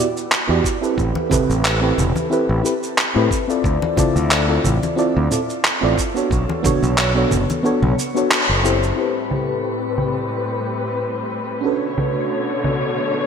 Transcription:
0.17 shaker soft
0.32 clap medium
0.32 shaker soft
0.48 0.60 E2 medium
0.48 0.77 B3 medium
0.48 0.78 E4 medium
0.48 0.78 F#4 medium
0.48 0.78 G4 medium
0.48 0.79 D5 medium
0.64 kick loud
0.64 shaker medium
0.81 1.27 C4 medium
0.81 1.27 E4 medium
0.81 1.27 G4 medium
0.81 1.28 A4 medium
0.81 1.28 B4 medium
0.81 shaker soft
0.98 1.11 A1 medium
0.98 kick loud
0.98 shaker soft
1.15 high conga medium
1.30 1.77 C4 loud
1.30 1.78 E4 medium
1.30 1.78 G4 medium
1.30 1.78 A4 medium
1.30 1.79 B4 loud
1.30 kick loud
1.30 high conga medium
1.30 low conga medium
1.30 shaker medium
1.50 1.91 A1 loud
1.50 shaker soft
1.65 clap loud
1.65 shaker soft
1.81 2.27 C4 medium
1.81 2.27 E4 medium
1.81 2.27 G4 medium
1.81 2.28 A4 medium
1.81 2.28 B4 medium
1.98 2.11 E1 loud
1.98 low conga medium
1.98 shaker medium
2.16 high conga medium
2.16 shaker soft
2.30 2.60 C4 medium
2.30 2.60 E4 medium
2.30 2.61 G4 medium
2.30 2.61 A4 medium
2.30 2.62 B4 loud
2.30 shaker soft
2.49 2.60 A1 medium
2.63 2.73 C4 medium
2.63 2.73 E4 medium
2.63 2.74 G4 medium
2.63 2.74 A4 medium
2.63 2.75 B4 medium
2.63 shaker medium
2.83 shaker soft
2.98 clap medium
2.98 shaker soft
3.15 3.27 A2 medium
3.15 3.44 C4 medium
3.15 3.44 E4 medium
3.15 3.45 G4 medium
3.15 3.45 A4 medium
3.15 3.46 B4 medium
3.31 kick loud
3.31 shaker medium
3.48 3.93 C4 medium
3.48 3.94 E4 medium
3.48 3.94 F4 medium
3.48 3.94 A4 medium
3.48 3.95 D5 medium
3.48 shaker soft
3.64 3.77 D2 loud
3.64 kick loud
3.64 shaker soft
3.82 high conga medium
3.96 4.44 C4 loud
3.96 4.44 E4 medium
3.96 4.45 F4 medium
3.96 4.45 A4 medium
3.96 4.46 D5 loud
3.96 kick loud
3.96 high conga medium
3.96 low conga medium
3.96 shaker medium
4.16 4.57 D2 loud
4.16 shaker soft
4.31 clap medium
4.31 shaker soft
4.48 4.93 C4 medium
4.48 4.94 E4 medium
4.48 4.94 F4 medium
4.48 4.94 A4 medium
4.48 4.95 D5 medium
4.64 4.78 A1 loud
4.64 low conga medium
4.64 shaker medium
4.83 high conga medium
4.83 shaker soft
4.96 5.27 C4 medium
4.96 5.27 E4 medium
4.96 5.27 F4 medium
4.96 5.28 A4 medium
4.96 5.28 D5 loud
4.96 shaker soft
5.17 5.27 D2 medium
5.30 5.40 C4 medium
5.30 5.40 E4 medium
5.30 5.41 F4 medium
5.30 5.41 A4 medium
5.30 5.42 D5 medium
5.30 low conga medium
5.30 shaker medium
5.50 shaker soft
5.65 clap loud
5.65 shaker soft
5.81 5.94 A1 medium
5.81 6.11 C4 medium
5.81 6.11 E4 medium
5.81 6.11 F4 medium
5.81 6.12 A4 medium
5.81 6.12 D5 medium
5.98 kick medium
5.98 shaker medium
6.14 6.60 B3 medium
6.14 6.60 D4 medium
6.14 6.61 F#4 medium
6.14 6.61 A4 medium
6.14 6.61 C#5 medium
6.14 shaker soft
6.31 6.44 B1 loud
6.31 kick loud
6.31 shaker soft
6.49 high conga medium
6.63 7.11 B3 loud
6.63 7.11 D4 medium
6.63 7.11 F#4 medium
6.63 7.12 A4 medium
6.63 7.12 C#5 loud
6.63 kick loud
6.63 high conga medium
6.63 low conga medium
6.63 shaker medium
6.83 7.24 B1 loud
6.83 shaker soft
6.98 clap loud
6.98 shaker soft
7.15 7.60 B3 medium
7.15 7.60 D4 medium
7.15 7.61 F#4 medium
7.15 7.61 A4 medium
7.15 7.62 C#5 medium
7.31 7.44 F#1 loud
7.31 low conga medium
7.31 shaker medium
7.50 high conga medium
7.50 shaker soft
7.63 7.93 B3 medium
7.63 7.94 D4 medium
7.63 7.94 F#4 medium
7.63 7.95 A4 medium
7.63 7.95 C#5 loud
7.63 shaker soft
7.82 7.93 B1 medium
7.82 low conga medium
7.99 shaker medium
8.15 8.60 B3 medium
8.15 8.60 D4 medium
8.15 8.61 F#4 medium
8.15 8.61 A4 medium
8.15 8.62 C#5 medium
8.15 shaker soft
8.31 clap loud
8.31 shaker soft
8.49 8.91 F#1 medium
8.63 8.94 C4 medium
8.63 8.95 E4 medium
8.63 8.97 G4 medium
8.63 8.98 A4 medium
8.63 9.28 C5 medium
8.63 shaker medium
8.83 shaker soft
8.95 11.61 A2 medium
8.95 11.61 G3 medium
8.95 11.59 C4 medium
8.95 11.62 C4 medium
8.95 11.60 E4 medium
8.95 11.61 G4 medium
8.95 11.61 B4 medium
9.00 11.62 A4 medium
9.00 11.62 B4 medium
9.31 low conga medium
9.98 low conga medium
11.61 13.27 B2 medium
11.61 13.27 D3 medium
11.61 13.27 A3 medium
11.61 13.27 C#4 medium
11.61 13.27 D4 medium
11.61 13.27 F#4 medium
11.61 13.27 C#5 medium
11.66 13.27 A4 medium
11.66 13.27 B4 medium
11.98 low conga medium
12.64 low conga medium

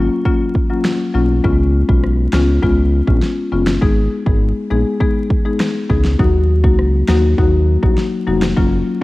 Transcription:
0.00 0.23 F#3 medium
0.00 0.23 A#3 medium
0.00 0.23 C#4 medium
0.00 0.23 F4 medium
0.25 0.41 F#3 medium
0.25 0.41 A#3 medium
0.25 0.41 C#4 medium
0.25 0.41 F4 loud
0.25 kick medium
0.55 kick loud
0.70 0.85 F#3 medium
0.70 0.85 A#3 medium
0.70 0.85 C#4 medium
0.70 0.85 F4 medium
0.85 finger snap medium
0.85 snare loud
1.14 1.41 B1 medium
1.14 1.30 F#3 medium
1.14 1.30 A#3 medium
1.14 1.30 C#4 medium
1.14 1.30 F4 medium
1.44 1.83 C#2 loud
1.44 1.59 G#3 medium
1.44 1.59 B3 medium
1.44 1.59 C#4 medium
1.44 1.60 F4 loud
1.44 kick loud
1.88 2.28 B1 medium
1.88 2.30 G#3 medium
1.88 2.30 B3 medium
1.88 2.30 C#4 medium
1.88 2.30 F4 medium
1.88 kick loud
2.03 cross-stick medium
2.33 2.59 C#2 medium
2.33 2.60 G#3 medium
2.33 2.61 B3 medium
2.33 2.61 C#4 medium
2.33 2.61 F4 medium
2.33 finger snap medium
2.33 snare loud
2.63 3.02 C#2 medium
2.63 2.78 G#3 medium
2.63 2.78 B3 medium
2.63 2.78 C#4 medium
2.63 2.78 F4 loud
2.63 kick medium
3.07 3.21 A#1 medium
3.07 3.23 G#3 medium
3.07 3.23 B3 medium
3.07 3.23 C#4 medium
3.07 3.23 F4 medium
3.07 kick medium
3.22 snare medium
3.52 3.78 F#1 loud
3.52 3.67 G#3 medium
3.52 3.67 B3 medium
3.52 3.67 C#4 medium
3.52 3.67 F4 medium
3.67 finger snap medium
3.67 snare loud
3.81 4.08 G#1 loud
3.81 3.97 G#3 medium
3.81 3.97 B3 medium
3.81 3.97 D#4 medium
3.81 3.97 G#4 loud
3.81 kick loud
4.26 4.52 G#1 medium
4.26 4.67 G#3 medium
4.26 4.67 B3 medium
4.26 4.67 D#4 medium
4.26 4.68 G#4 medium
4.26 kick loud
4.70 4.84 A#1 loud
4.70 4.98 G#3 medium
4.70 4.98 B3 medium
4.70 4.98 D#4 medium
4.70 4.98 G#4 medium
5.00 5.16 G#3 medium
5.00 5.16 B3 medium
5.00 5.16 D#4 medium
5.00 5.16 G#4 medium
5.00 kick medium
5.30 kick loud
5.45 5.60 G#3 medium
5.45 5.60 B3 medium
5.45 5.61 D#4 medium
5.45 5.61 G#4 medium
5.60 finger snap medium
5.60 cross-stick medium
5.60 snare loud
5.90 6.16 C#2 medium
5.90 6.05 G#3 medium
5.90 6.05 B3 medium
5.90 6.05 D#4 medium
5.90 6.05 G#4 medium
5.90 kick medium
6.05 snare medium
6.19 6.65 D#2 loud
6.19 6.35 F#3 medium
6.19 6.35 A#3 medium
6.19 6.35 D#4 medium
6.19 6.35 F#4 loud
6.19 kick loud
6.64 7.03 C#2 medium
6.64 7.05 F#3 medium
6.64 7.05 A#3 medium
6.64 7.05 D#4 medium
6.64 7.05 F#4 medium
6.64 kick loud
6.79 cross-stick medium
7.08 7.35 D#2 medium
7.08 7.36 F#3 medium
7.08 7.36 A#3 medium
7.08 7.36 D#4 medium
7.08 7.36 F#4 medium
7.08 finger snap medium
7.08 snare loud
7.38 7.77 D#2 medium
7.38 7.53 F#3 medium
7.38 7.53 A#3 medium
7.38 7.54 D#4 medium
7.38 7.54 F#4 loud
7.38 kick medium
7.83 7.96 A#1 loud
7.83 7.98 F#3 medium
7.83 7.98 A#3 medium
7.83 7.98 D#4 medium
7.83 7.98 F#4 medium
7.83 kick medium
7.98 snare medium
8.27 8.53 F1 medium
8.27 8.42 F#3 medium
8.27 8.43 A#3 medium
8.27 8.43 D#4 medium
8.27 8.43 F#4 medium
8.42 finger snap medium
8.42 snare loud
8.57 8.83 F#1 loud
8.57 8.72 F#3 medium
8.57 8.72 A#3 medium
8.57 8.72 C#4 medium
8.57 8.72 F4 medium
8.57 kick loud

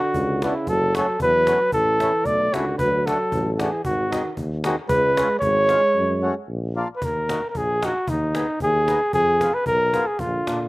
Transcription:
0.00 0.46 D3 medium
0.00 0.46 F#4 loud
0.14 0.49 C#2 loud
0.14 cajon bass medium
0.42 0.70 C#3 medium
0.42 0.54 B3 medium
0.42 0.54 D4 medium
0.42 0.70 E4 medium
0.42 0.54 F#4 medium
0.42 cajon slap medium
0.67 1.02 F#1 loud
0.67 0.96 F#3 loud
0.67 0.96 A4 loud
0.67 cajon bass medium
0.95 1.19 F#3 medium
0.95 1.06 A3 medium
0.95 1.07 C#4 medium
0.95 1.06 F#4 medium
0.95 1.19 A4 medium
0.95 cajon slap medium
1.20 1.54 E2 loud
1.20 1.69 F#3 medium
1.20 1.70 B4 loud
1.20 cajon bass medium
1.47 1.59 A3 medium
1.47 1.59 C#4 medium
1.47 1.59 F#4 medium
1.47 cajon slap medium
1.72 2.07 A1 medium
1.72 2.27 E3 medium
1.72 2.27 A4 loud
1.72 cajon bass medium
2.00 2.11 A3 medium
2.00 2.12 C#4 soft
2.00 2.12 E4 medium
2.00 cajon slap medium
2.25 2.50 B1 medium
2.25 2.57 A3 medium
2.25 2.55 D5 loud
2.25 cajon bass medium
2.53 2.76 C#2 medium
2.53 2.80 D3 medium
2.53 2.65 A3 medium
2.53 2.65 C#4 soft
2.53 2.65 E4 medium
2.53 2.77 F#4 medium
2.53 cajon slap medium
2.78 3.14 D2 medium
2.78 3.09 F#3 medium
2.78 3.07 B4 loud
2.78 cajon bass medium
3.06 3.54 F#3 medium
3.06 3.18 A3 medium
3.06 3.18 D4 medium
3.06 3.18 F#4 medium
3.06 3.53 A4 medium
3.06 cajon slap medium
3.32 3.66 A1 loud
3.32 cajon bass medium
3.53 3.61 F#3 medium
3.53 3.61 A4 soft
3.59 3.84 E3 medium
3.59 3.70 A3 medium
3.59 3.71 D4 medium
3.59 3.70 F#4 medium
3.59 3.84 G#4 medium
3.59 cajon slap medium
3.85 4.19 G#1 medium
3.85 4.33 D#3 medium
3.85 4.33 F#4 medium
3.85 cajon bass medium
4.11 4.23 G#3 medium
4.11 4.23 C4 medium
4.11 4.23 D#4 medium
4.11 cajon slap medium
4.37 4.71 D#2 medium
4.37 cajon bass medium
4.64 4.76 D#3 medium
4.64 4.76 G#3 medium
4.64 4.76 C4 medium
4.64 4.76 D#4 medium
4.64 4.76 F#4 medium
4.64 cajon slap medium
4.77 cajon slap soft
4.89 5.24 C#2 loud
4.89 5.38 G#3 medium
4.89 5.38 B4 loud
4.89 cajon bass medium
5.17 5.28 G#3 medium
5.17 5.28 C#4 medium
5.17 5.28 F4 medium
5.17 cajon slap medium
5.39 5.76 G#1 medium
5.39 6.44 G#3 medium
5.39 6.43 C#5 loud
5.39 cajon bass medium
5.69 5.81 G#3 medium
5.69 5.81 C#4 medium
5.69 5.81 F4 medium
5.69 cajon slap medium
5.95 6.30 F#2 loud
6.22 6.34 A3 medium
6.22 6.35 C#4 medium
6.22 6.34 F#4 medium
6.48 6.83 A#1 medium
6.76 6.88 A#3 medium
6.76 6.88 D4 medium
6.76 6.88 F4 medium
6.96 7.06 B4 medium
7.02 7.36 D#2 medium
7.02 7.49 A#4 medium
7.02 cajon bass medium
7.28 7.41 A#3 medium
7.28 7.41 D#4 medium
7.28 7.41 F#4 medium
7.28 cajon slap medium
7.49 7.59 A#4 medium
7.55 7.89 A#1 medium
7.55 7.87 G#4 medium
7.55 cajon bass medium
7.82 7.94 A#3 medium
7.82 7.94 D#4 medium
7.82 7.94 F#4 medium
7.82 8.11 F#4 medium
7.82 cajon slap medium
8.07 8.42 D#2 medium
8.07 8.61 D#4 medium
8.07 cajon bass medium
8.34 8.46 B3 medium
8.34 8.47 D#4 medium
8.34 8.47 G#4 medium
8.34 cajon slap medium
8.48 cajon slap soft
8.60 8.95 D#2 loud
8.60 9.11 G#4 loud
8.60 cajon bass medium
8.88 8.99 B3 medium
8.88 9.00 D#4 medium
8.88 9.00 G#4 medium
8.88 cajon slap medium
9.13 9.47 F2 loud
9.13 9.56 G#4 loud
9.13 cajon bass medium
9.41 9.53 B3 medium
9.41 9.53 F4 medium
9.41 9.53 G#4 medium
9.41 cajon slap medium
9.53 9.66 B4 medium
9.53 cajon slap soft
9.66 10.01 B1 loud
9.66 10.08 A#4 loud
9.66 cajon bass medium
9.94 10.05 B3 medium
9.94 10.05 F4 medium
9.94 10.05 G#4 medium
9.94 cajon slap medium
10.07 10.21 G#4 medium
10.19 10.37 A#1 loud
10.19 10.68 D3 medium
10.19 10.68 F4 medium
10.19 cajon bass medium
10.47 10.68 A#2 medium
10.47 10.58 A#3 medium
10.47 10.59 D4 medium
10.47 10.59 F4 medium
10.47 cajon slap medium

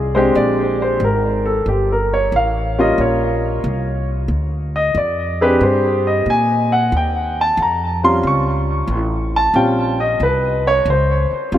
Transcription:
0.00 0.33 C2 medium
0.00 0.15 G#4 medium
0.15 0.97 G#3 medium
0.15 0.98 C4 medium
0.15 0.98 D4 medium
0.15 0.98 G4 medium
0.15 0.34 C5 medium
0.35 0.99 A#1 medium
0.35 0.80 D5 medium
0.82 1.01 C5 medium
1.00 1.64 G#1 medium
1.04 1.47 A#4 medium
1.46 1.66 A4 medium
1.66 2.30 G1 medium
1.66 1.89 G4 medium
1.92 2.12 A#4 medium
2.14 2.33 C#5 medium
2.32 2.96 A1 medium
2.32 2.78 F5 medium
2.79 3.60 G3 medium
2.79 3.60 A#3 medium
2.79 3.60 C#4 medium
2.79 3.61 F4 medium
2.79 2.99 D#5 medium
2.98 3.62 A#1 medium
2.98 4.07 C#5 medium
3.64 4.28 C2 medium
4.28 4.93 D2 medium
4.76 4.95 D#5 medium
4.95 5.59 F2 medium
4.95 5.41 D5 medium
5.41 6.23 C4 medium
5.41 6.24 D4 medium
5.41 6.24 G4 medium
5.41 6.23 G#4 medium
5.41 5.61 B4 medium
5.61 6.25 G2 medium
5.61 6.06 C5 medium
6.07 6.27 D#5 medium
6.26 6.90 A#2 medium
6.30 6.73 G#5 loud
6.72 6.92 F#5 medium
6.92 7.56 D#2 medium
6.97 7.39 G5 medium
7.41 7.59 A5 medium
7.57 8.22 F2 medium
7.62 8.04 A#5 medium
8.03 8.86 G3 medium
8.03 8.86 C4 medium
8.03 8.86 C#4 medium
8.03 8.86 F4 medium
8.03 8.24 C6 loud
8.23 8.87 C#2 medium
8.27 9.33 C#6 medium
8.87 9.52 A1 medium
9.36 9.56 A5 medium
9.54 10.18 A#1 medium
9.54 9.96 G3 medium
9.54 9.96 C4 medium
9.54 9.96 C#4 medium
9.54 9.96 F4 medium
9.54 10.00 G5 medium
10.00 10.20 D#5 medium
10.20 10.84 C2 medium
10.20 10.66 B4 medium
10.67 10.87 C#5 loud
10.86 11.28 C#2 medium
10.90 11.50 C5 medium
11.31 muted upright bass stroke soft
11.52 11.58 A1 medium
11.52 11.58 G3 medium
11.52 11.58 C4 medium
11.52 11.58 C#4 medium
11.52 11.58 F4 medium

